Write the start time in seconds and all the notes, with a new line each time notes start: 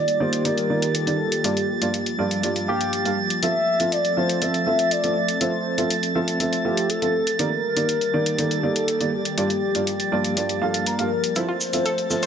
Already playing: D#3 G3 A#3 F4 G4 D5 A6
0.08 closed hi-hat
0.20 D#3 A#3 D#4 G4 C5 D5
0.33 closed hi-hat
0.45 D#3 A#3 D#4 G4 A#4 D5, closed hi-hat
0.58 closed hi-hat
0.70 D#3 A#3 D#4 G4 D5
0.82 closed hi-hat
0.95 A4, closed hi-hat
1.07 D#3 A#3 D#4 G4 D5, closed hi-hat
1.32 closed hi-hat
1.44 G2 F3 A#3 F4 G4 D5, closed hi-hat
1.57 closed hi-hat
1.81 G2 A#3 F4 G4 D5, closed hi-hat
1.94 closed hi-hat
2.06 closed hi-hat
2.19 G2 A#3 F4 G4 D5
2.31 closed hi-hat
2.43 G2 A#3 F4 G4 D5, closed hi-hat
2.56 closed hi-hat
2.68 G2 A#3 F4 G4 F5
2.81 closed hi-hat
2.93 closed hi-hat
3.05 G2 A#3 F4 G4 F5, closed hi-hat
3.30 closed hi-hat
3.42 F3 A3 C4 F4 A4 E5, closed hi-hat
3.80 F3 C4 F4 A4 E5, closed hi-hat
3.92 D5, closed hi-hat
4.05 closed hi-hat
4.17 F3 C4 F4 A4 C5 E5
4.29 closed hi-hat
4.42 F3 C4 F4 A4 E5, closed hi-hat
4.54 closed hi-hat
4.67 F3 C4 F4 A4 E5
4.79 closed hi-hat
4.91 D5, closed hi-hat
5.04 F3 C4 F4 A4 E5, closed hi-hat
5.28 closed hi-hat
5.41 F3 C4 F4 A4 C5 E5, closed hi-hat
5.78 F3 C4 F4 A4 E5, closed hi-hat
5.90 closed hi-hat
6.03 closed hi-hat
6.15 F3 C4 F4 A4 E5
6.28 closed hi-hat
6.40 F3 C4 F4 A4 E5, closed hi-hat
6.53 closed hi-hat
6.65 F3 C4 F4 G4 A4 E5
6.77 closed hi-hat
6.90 A4, closed hi-hat
7.02 F3 C4 F4 A4 E5, closed hi-hat
7.27 closed hi-hat
7.39 D#3 G3 A#3 D#4 G4 A#4 D5, closed hi-hat
7.76 D#3 A#3 D#4 G4 D5, closed hi-hat
7.89 closed hi-hat
8.01 closed hi-hat
8.14 D#3 A#3 D#4 G4 D5
8.26 closed hi-hat
8.38 D#3 A#3 D#4 G4 A4 D5, closed hi-hat
8.51 closed hi-hat
8.63 D#3 A#3 D#4 G4 D5
8.76 closed hi-hat
8.88 closed hi-hat
9.01 D#3 A#3 D#4 G4 D5, closed hi-hat
9.13 G4
9.25 closed hi-hat
9.38 G2 F3 A#3 F4 G4 D5, closed hi-hat
9.50 closed hi-hat
9.75 G2 A#3 F4 G4 D5, closed hi-hat
9.87 closed hi-hat
10.00 closed hi-hat
10.12 G2 A#3 F4 G4 D5
10.24 closed hi-hat
10.37 G2 A#3 F4 G4 D5, closed hi-hat
10.49 closed hi-hat
10.62 G2 A#3 F4 G4 A4 F5
10.74 closed hi-hat
10.86 A#4, closed hi-hat
10.99 G2 A#3 F4 G4 F5, closed hi-hat
11.24 closed hi-hat
11.36 F3 A3 C4 E4 F4 A4 C5 E5 A6, closed hi-hat, cabasa
11.48 F4
11.61 cabasa
11.73 F3 C4 F4 A4 E5, closed hi-hat, cabasa
11.86 A4, closed hi-hat, cabasa
11.98 closed hi-hat
12.10 F3 C4 F4 A4 E5, cabasa
12.23 C5, closed hi-hat, cabasa